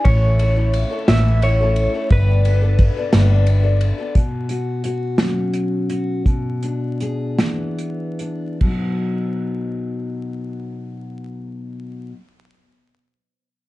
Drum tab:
CC |------|------|------|------|
RD |xxxxxx|xxxxxx|------|------|
HH |------|------|xxxxxx|xxxxxx|
SD |---o--|---o--|---o--|---o--|
BD |o-----|o-o---|o-----|o-----|

CC |x-----|------|
RD |------|------|
HH |------|------|
SD |------|------|
BD |o-----|------|